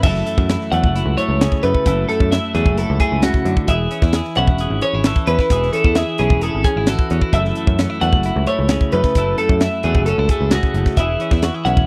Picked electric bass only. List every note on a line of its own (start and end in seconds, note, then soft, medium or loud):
0.03 0.21 F#1 loud
0.38 0.55 F#2 medium
0.72 0.85 E2 medium
0.84 1.01 F#1 medium
1.06 1.15 C#2 medium
1.28 1.46 C#2 medium
1.64 1.72 F#2 medium
1.86 2.04 F#1 loud
2.20 2.38 F#2 medium
2.55 2.67 E2 medium
2.65 2.83 F#1 medium
2.90 2.98 C#2 loud
3.12 3.29 C#2 medium
3.45 3.54 F#2 loud
3.68 3.86 E1 loud
4.02 4.20 E2 medium
4.37 4.49 B1 medium
4.47 4.65 E1 medium
4.70 4.79 G#1 medium
4.93 5.11 G#1 medium
5.27 5.36 E2 medium
5.50 5.68 E1 loud
5.84 6.02 E2 medium
6.20 6.32 B1 medium
6.30 6.48 E1 medium
6.55 6.63 G#1 medium
6.76 6.94 G#1 medium
7.11 7.19 E2 medium
7.33 7.50 F#1 loud
7.67 7.85 F#2 medium
8.02 8.14 E2 medium
8.12 8.30 F#1 medium
8.36 8.45 C#2 medium
8.59 8.76 C#2 medium
8.93 9.02 F#2 loud
9.16 9.33 F#1 loud
9.49 9.67 F#2 medium
9.84 9.96 E2 medium
9.95 10.12 F#1 medium
10.18 10.27 C#2 medium
10.41 10.58 C#2 medium
10.74 10.83 F#1 medium
10.97 11.15 E1 loud
11.32 11.49 E2 medium
11.65 11.78 B1 medium
11.77 11.87 E1 medium